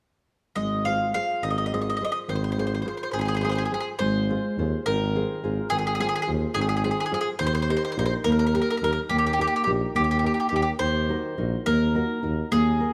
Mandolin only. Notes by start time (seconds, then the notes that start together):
0.56 D#5
0.85 F5
1.14 F5
1.43 D#5
1.50 D#5
1.58 D#5
1.66 D#5
1.74 D#5
1.81 D#5
1.90 D#5
1.97 D#5
2.04 D#5
2.12 D#5
2.29 C5
2.35 C5
2.44 C5
2.52 C5
2.59 C5
2.67 C5
2.75 C5
2.82 C5
2.88 C5
2.97 C5
3.03 C5
3.11 G#4 C5
3.19 G#4 C5
3.25 G#4 C5
3.35 G#4 C5
3.41 G#4 C5
3.49 G#4 C5
3.55 G#4 C5
3.65 G#4
3.74 G#4
3.80 G#4
3.99 C5
4.86 A#4
5.70 G#4
5.79 G#4
5.87 G#4
5.95 G#4
6.00 G#4
6.09 G#4
6.16 G#4
6.22 G#4
6.54 G#4
6.61 G#4
6.69 G#4
6.77 G#4
6.84 G#4
6.91 G#4
7.00 G#4
7.06 G#4
7.14 G#4
7.21 G#4
7.39 C5
7.47 C5
7.55 C5
7.62 C5
7.70 C5
7.77 C5
7.85 C5
7.92 C5
7.99 C5
8.06 C5
8.24 A#4
8.32 A#4
8.39 A#4
8.47 A#4
8.55 A#4
8.62 A#4
8.70 A#4
8.77 A#4
8.84 A#4
8.93 A#4
9.09 G4
9.18 G4
9.27 G4
9.33 G4
9.41 G4
9.47 G4
9.56 G4
9.64 G4
9.96 G4
10.11 G4
10.19 G4
10.26 G4
10.34 G4
10.40 G4
10.49 G4
10.56 G4
10.62 G4
10.79 C5
11.66 A#4
12.52 G#4